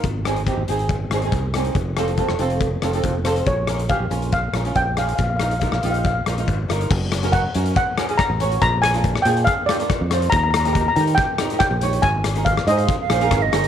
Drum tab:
CC |----------------|----------------|----------------|----------------|
HH |x-xxx-xxx-xxx-xx|x-xxx-xxx-xxx-xx|x-xxx-xxx-xxx-xx|x-xxx-xxx-xxx-xx|
SD |--r-------r---r-|--r--r----r---r-|--r-------r---r-|--r--r----r---r-|
BD |o---o---o---o---|o---o---o---o---|o---o---o---o---|o---o---o---o---|

CC |x---------------|----------------|----------------|----------------|
HH |--xxx-xxx-xxx-xx|x-xxx-xxx-xxx-xx|x-xxx-xxx-xxx-xx|x-xxx-xxx-xxx-xx|
SD |--r-------r-r---|--r--r----r-r-r-|--r-------r-r---|--r--r----r-r-r-|
BD |o---o---o---o---|o---o---o---o---|o---o---o---o---|o---o---o---o---|